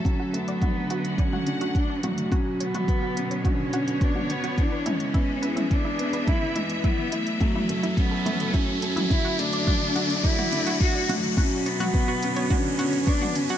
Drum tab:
HH |x-xxx-xxx-xxx-xx|x-xxx-xxx-xxx-xx|x-xxx-xxx-xxx-xx|x-xxx-xxx-xxx-xx|
T2 |----o----o----o-|---o----o----o--|--o----o----o---|o----o----o----o|
BD |o---o---o---o---|o---o---o---o---|o---o---o---o---|o---o---o---o---|

HH |x-xxx-xxx-xxx-xx|x-xxx-xxx-xxx-xx|
T2 |----o----o----o-|---o----o----o--|
BD |o---o---o---o---|o---o---o---o---|